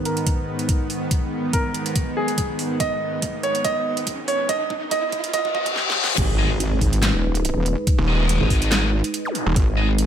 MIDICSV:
0, 0, Header, 1, 11, 480
1, 0, Start_track
1, 0, Key_signature, 5, "minor"
1, 0, Tempo, 422535
1, 1262, Time_signature, 4, 2, 24, 8
1, 11429, End_track
2, 0, Start_track
2, 0, Title_t, "Grand piano"
2, 0, Program_c, 0, 0
2, 63, Note_on_c, 0, 70, 93
2, 934, Note_off_c, 0, 70, 0
2, 1742, Note_on_c, 0, 70, 89
2, 2374, Note_off_c, 0, 70, 0
2, 2462, Note_on_c, 0, 68, 89
2, 3094, Note_off_c, 0, 68, 0
2, 3181, Note_on_c, 0, 75, 84
2, 3813, Note_off_c, 0, 75, 0
2, 3901, Note_on_c, 0, 73, 89
2, 4124, Note_off_c, 0, 73, 0
2, 4142, Note_on_c, 0, 75, 98
2, 4774, Note_off_c, 0, 75, 0
2, 4861, Note_on_c, 0, 73, 89
2, 5084, Note_off_c, 0, 73, 0
2, 5101, Note_on_c, 0, 75, 93
2, 5564, Note_off_c, 0, 75, 0
2, 5582, Note_on_c, 0, 75, 98
2, 6045, Note_off_c, 0, 75, 0
2, 6062, Note_on_c, 0, 75, 103
2, 6284, Note_off_c, 0, 75, 0
2, 6303, Note_on_c, 0, 75, 98
2, 6525, Note_off_c, 0, 75, 0
2, 11429, End_track
3, 0, Start_track
3, 0, Title_t, "Distorted electric guitar"
3, 0, Program_c, 1, 30
3, 7257, Note_on_c, 1, 75, 80
3, 7263, Note_on_c, 1, 59, 69
3, 7268, Note_on_c, 1, 68, 54
3, 7378, Note_off_c, 1, 68, 0
3, 7379, Note_off_c, 1, 59, 0
3, 7379, Note_off_c, 1, 75, 0
3, 9178, Note_on_c, 1, 75, 85
3, 9184, Note_on_c, 1, 59, 70
3, 9189, Note_on_c, 1, 68, 64
3, 9875, Note_off_c, 1, 59, 0
3, 9875, Note_off_c, 1, 68, 0
3, 9875, Note_off_c, 1, 75, 0
3, 9899, Note_on_c, 1, 68, 70
3, 9902, Note_on_c, 1, 59, 72
3, 9908, Note_on_c, 1, 75, 75
3, 10081, Note_off_c, 1, 59, 0
3, 10081, Note_off_c, 1, 68, 0
3, 10081, Note_off_c, 1, 75, 0
3, 11099, Note_on_c, 1, 75, 91
3, 11103, Note_on_c, 1, 59, 76
3, 11111, Note_on_c, 1, 68, 56
3, 11219, Note_off_c, 1, 59, 0
3, 11219, Note_off_c, 1, 68, 0
3, 11219, Note_off_c, 1, 75, 0
3, 11429, End_track
4, 0, Start_track
4, 0, Title_t, "Supersaw synth"
4, 0, Program_c, 2, 81
4, 0, Note_on_c, 2, 44, 81
4, 0, Note_on_c, 2, 51, 73
4, 0, Note_on_c, 2, 59, 87
4, 6496, Note_off_c, 2, 44, 0
4, 6496, Note_off_c, 2, 51, 0
4, 6496, Note_off_c, 2, 59, 0
4, 7021, Note_on_c, 2, 56, 76
4, 7021, Note_on_c, 2, 71, 85
4, 7022, Note_on_c, 2, 63, 71
4, 10849, Note_off_c, 2, 71, 0
4, 10863, Note_on_c, 2, 75, 85
4, 11429, Note_off_c, 2, 56, 0
4, 11429, Note_off_c, 2, 63, 0
4, 11429, Note_off_c, 2, 75, 0
4, 11429, End_track
5, 0, Start_track
5, 0, Title_t, "Wobble bass"
5, 0, Program_c, 3, 39
5, 7022, Note_on_c, 3, 32, 88
5, 7724, Note_off_c, 3, 32, 0
5, 7742, Note_on_c, 3, 32, 93
5, 8091, Note_off_c, 3, 32, 0
5, 8112, Note_on_c, 3, 27, 100
5, 8571, Note_off_c, 3, 27, 0
5, 8592, Note_on_c, 3, 27, 97
5, 8811, Note_off_c, 3, 27, 0
5, 9551, Note_on_c, 3, 32, 93
5, 10251, Note_off_c, 3, 32, 0
5, 10863, Note_on_c, 3, 32, 90
5, 11429, Note_off_c, 3, 32, 0
5, 11429, End_track
6, 0, Start_track
6, 0, Title_t, "Detuned saw bass"
6, 0, Program_c, 4, 39
6, 9071, Note_on_c, 4, 27, 101
6, 9530, Note_off_c, 4, 27, 0
6, 10752, Note_on_c, 4, 27, 107
6, 10844, Note_off_c, 4, 27, 0
6, 11429, End_track
7, 0, Start_track
7, 0, Title_t, "Impact"
7, 0, Program_c, 5, 103
7, 7021, Note_on_c, 5, 60, 72
7, 8942, Note_off_c, 5, 60, 0
7, 11429, End_track
8, 0, Start_track
8, 0, Title_t, "Reverse cymbal"
8, 0, Program_c, 6, 119
8, 6061, Note_on_c, 6, 60, 76
8, 7022, Note_off_c, 6, 60, 0
8, 11429, End_track
9, 0, Start_track
9, 0, Title_t, "Riser"
9, 0, Program_c, 7, 103
9, 0, Note_on_c, 7, 60, 75
9, 7021, Note_off_c, 7, 60, 0
9, 11429, End_track
10, 0, Start_track
10, 0, Title_t, "Zap"
10, 0, Program_c, 8, 103
10, 10511, Note_on_c, 8, 60, 62
10, 10622, Note_off_c, 8, 60, 0
10, 11429, End_track
11, 0, Start_track
11, 0, Title_t, "Drums"
11, 61, Note_on_c, 9, 42, 52
11, 175, Note_off_c, 9, 42, 0
11, 191, Note_on_c, 9, 42, 55
11, 301, Note_off_c, 9, 42, 0
11, 301, Note_on_c, 9, 42, 80
11, 302, Note_on_c, 9, 36, 96
11, 415, Note_off_c, 9, 36, 0
11, 415, Note_off_c, 9, 42, 0
11, 671, Note_on_c, 9, 42, 53
11, 781, Note_off_c, 9, 42, 0
11, 781, Note_on_c, 9, 42, 79
11, 782, Note_on_c, 9, 36, 98
11, 895, Note_off_c, 9, 36, 0
11, 895, Note_off_c, 9, 42, 0
11, 1021, Note_on_c, 9, 46, 84
11, 1135, Note_off_c, 9, 46, 0
11, 1262, Note_on_c, 9, 36, 92
11, 1262, Note_on_c, 9, 42, 79
11, 1375, Note_off_c, 9, 36, 0
11, 1375, Note_off_c, 9, 42, 0
11, 1742, Note_on_c, 9, 36, 92
11, 1742, Note_on_c, 9, 42, 76
11, 1856, Note_off_c, 9, 36, 0
11, 1856, Note_off_c, 9, 42, 0
11, 1982, Note_on_c, 9, 42, 49
11, 2095, Note_off_c, 9, 42, 0
11, 2111, Note_on_c, 9, 42, 56
11, 2221, Note_off_c, 9, 42, 0
11, 2221, Note_on_c, 9, 42, 82
11, 2222, Note_on_c, 9, 36, 102
11, 2335, Note_off_c, 9, 42, 0
11, 2336, Note_off_c, 9, 36, 0
11, 2591, Note_on_c, 9, 42, 50
11, 2701, Note_off_c, 9, 42, 0
11, 2701, Note_on_c, 9, 42, 82
11, 2702, Note_on_c, 9, 36, 98
11, 2815, Note_off_c, 9, 42, 0
11, 2816, Note_off_c, 9, 36, 0
11, 2941, Note_on_c, 9, 46, 86
11, 3055, Note_off_c, 9, 46, 0
11, 3181, Note_on_c, 9, 42, 78
11, 3182, Note_on_c, 9, 36, 100
11, 3295, Note_off_c, 9, 42, 0
11, 3296, Note_off_c, 9, 36, 0
11, 3661, Note_on_c, 9, 42, 73
11, 3662, Note_on_c, 9, 36, 102
11, 3775, Note_off_c, 9, 42, 0
11, 3776, Note_off_c, 9, 36, 0
11, 3901, Note_on_c, 9, 42, 50
11, 4015, Note_off_c, 9, 42, 0
11, 4031, Note_on_c, 9, 42, 52
11, 4141, Note_off_c, 9, 42, 0
11, 4141, Note_on_c, 9, 42, 77
11, 4142, Note_on_c, 9, 36, 103
11, 4255, Note_off_c, 9, 42, 0
11, 4256, Note_off_c, 9, 36, 0
11, 4510, Note_on_c, 9, 42, 52
11, 4621, Note_off_c, 9, 42, 0
11, 4621, Note_on_c, 9, 42, 77
11, 4622, Note_on_c, 9, 36, 107
11, 4735, Note_off_c, 9, 36, 0
11, 4735, Note_off_c, 9, 42, 0
11, 4861, Note_on_c, 9, 46, 87
11, 4974, Note_off_c, 9, 46, 0
11, 5101, Note_on_c, 9, 42, 76
11, 5102, Note_on_c, 9, 36, 99
11, 5215, Note_off_c, 9, 36, 0
11, 5215, Note_off_c, 9, 42, 0
11, 5342, Note_on_c, 9, 36, 111
11, 5455, Note_off_c, 9, 36, 0
11, 5581, Note_on_c, 9, 42, 72
11, 5582, Note_on_c, 9, 36, 97
11, 5695, Note_off_c, 9, 36, 0
11, 5695, Note_off_c, 9, 42, 0
11, 5821, Note_on_c, 9, 42, 50
11, 5822, Note_on_c, 9, 36, 102
11, 5934, Note_off_c, 9, 42, 0
11, 5935, Note_off_c, 9, 36, 0
11, 5950, Note_on_c, 9, 42, 51
11, 6060, Note_off_c, 9, 42, 0
11, 6060, Note_on_c, 9, 42, 76
11, 6061, Note_on_c, 9, 36, 112
11, 6174, Note_off_c, 9, 42, 0
11, 6175, Note_off_c, 9, 36, 0
11, 6191, Note_on_c, 9, 36, 94
11, 6302, Note_off_c, 9, 36, 0
11, 6302, Note_on_c, 9, 36, 106
11, 6415, Note_off_c, 9, 36, 0
11, 6430, Note_on_c, 9, 42, 52
11, 6431, Note_on_c, 9, 36, 96
11, 6541, Note_on_c, 9, 38, 68
11, 6544, Note_off_c, 9, 42, 0
11, 6545, Note_off_c, 9, 36, 0
11, 6654, Note_off_c, 9, 38, 0
11, 6700, Note_on_c, 9, 38, 89
11, 6814, Note_off_c, 9, 38, 0
11, 6861, Note_on_c, 9, 38, 99
11, 6974, Note_off_c, 9, 38, 0
11, 7021, Note_on_c, 9, 42, 84
11, 7021, Note_on_c, 9, 49, 103
11, 7022, Note_on_c, 9, 36, 117
11, 7134, Note_off_c, 9, 42, 0
11, 7134, Note_off_c, 9, 49, 0
11, 7135, Note_off_c, 9, 36, 0
11, 7501, Note_on_c, 9, 42, 79
11, 7614, Note_off_c, 9, 42, 0
11, 7741, Note_on_c, 9, 46, 93
11, 7742, Note_on_c, 9, 36, 60
11, 7854, Note_off_c, 9, 46, 0
11, 7855, Note_off_c, 9, 36, 0
11, 7870, Note_on_c, 9, 42, 57
11, 7981, Note_off_c, 9, 42, 0
11, 7981, Note_on_c, 9, 38, 117
11, 7981, Note_on_c, 9, 39, 99
11, 7981, Note_on_c, 9, 42, 87
11, 8094, Note_off_c, 9, 38, 0
11, 8094, Note_off_c, 9, 39, 0
11, 8094, Note_off_c, 9, 42, 0
11, 8350, Note_on_c, 9, 42, 57
11, 8461, Note_off_c, 9, 42, 0
11, 8461, Note_on_c, 9, 42, 82
11, 8574, Note_off_c, 9, 42, 0
11, 8701, Note_on_c, 9, 42, 55
11, 8814, Note_off_c, 9, 42, 0
11, 8941, Note_on_c, 9, 42, 81
11, 8942, Note_on_c, 9, 36, 119
11, 9054, Note_off_c, 9, 42, 0
11, 9055, Note_off_c, 9, 36, 0
11, 9421, Note_on_c, 9, 42, 77
11, 9535, Note_off_c, 9, 42, 0
11, 9661, Note_on_c, 9, 46, 92
11, 9662, Note_on_c, 9, 36, 63
11, 9774, Note_off_c, 9, 46, 0
11, 9776, Note_off_c, 9, 36, 0
11, 9791, Note_on_c, 9, 42, 53
11, 9901, Note_off_c, 9, 42, 0
11, 9901, Note_on_c, 9, 38, 126
11, 9901, Note_on_c, 9, 39, 92
11, 9901, Note_on_c, 9, 42, 87
11, 10015, Note_off_c, 9, 38, 0
11, 10015, Note_off_c, 9, 39, 0
11, 10015, Note_off_c, 9, 42, 0
11, 10271, Note_on_c, 9, 42, 57
11, 10382, Note_off_c, 9, 42, 0
11, 10382, Note_on_c, 9, 42, 80
11, 10496, Note_off_c, 9, 42, 0
11, 10622, Note_on_c, 9, 42, 55
11, 10736, Note_off_c, 9, 42, 0
11, 10862, Note_on_c, 9, 42, 77
11, 10863, Note_on_c, 9, 36, 122
11, 10976, Note_off_c, 9, 36, 0
11, 10976, Note_off_c, 9, 42, 0
11, 11342, Note_on_c, 9, 42, 75
11, 11429, Note_off_c, 9, 42, 0
11, 11429, End_track
0, 0, End_of_file